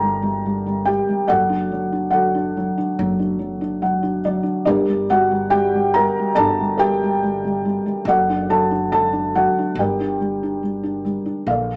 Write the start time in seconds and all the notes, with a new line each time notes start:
Already playing: G1 G3 D4 F#4 G4 A4 A#4 D5 F#5 G5 A5 A#5
0.02 G3
0.22 G3
0.46 G3
0.66 G3
0.85 G3 G4 G5
1.09 G3
1.27 F#1 F#3 F#4 A4 D5 F#5
1.49 D4
1.72 F#3
1.92 D4
2.11 F#3 F#4 A4 F#5
2.35 D4
2.57 F#3
2.78 D4
2.99 F#1 F#3
3.19 D4
3.39 F#3
3.61 D4
3.82 F#3 F#5
4.03 D4
4.25 F#3 D5
4.43 D4
4.65 G1 G3 D4 G4 A#4 D5
4.88 G3
5.10 G3 F#4 F#5
5.31 G3
5.50 G3 G4 G5
5.74 G3
5.94 G3 A#4 A#5
6.19 G3
6.35 G1 A4 D5 A5
6.40 D4
6.60 G3
6.77 G4 A#4 G5
6.82 G3
7.03 G3
7.23 G3
7.44 G3
7.65 G3
7.86 G3
8.05 F#1 F#3 F#4 A4 D5 F#5
8.29 D4
8.49 F#3 A4 A5
8.71 D4
8.92 F#3 A4 A5
9.13 D4
9.35 F#3 F#4 F#5
9.58 D4
9.75 G1 G5
9.79 G3 G4 A#4 D5
10.00 D4
10.20 G3
10.43 D4
10.63 G3
10.83 D4
11.05 G3
11.26 D4
11.46 A#1 A#3 A4 D5 F5